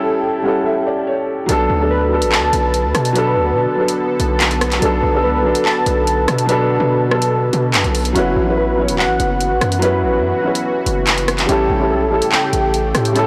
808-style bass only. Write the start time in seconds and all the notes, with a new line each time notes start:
1.49 B1
1.70 D2
2.22 A1
2.37 D2
2.53 B1
2.84 D2
2.95 B2
3.36 D2
3.52 B2
4.20 B1
4.82 B1
5.03 B1
5.24 C#2
5.39 B1
5.86 B1
6.28 B2
6.80 B2
7.53 B2
7.74 F#2
7.84 B1
8.16 F#1
8.36 A1
8.88 E1
9.04 A1
9.20 F#1
9.51 A1
9.61 F#2
10.03 A1
10.19 F#2
10.86 F#1
11.49 A1
11.70 A1
11.91 B1
12.06 A1
12.53 A1
12.95 A2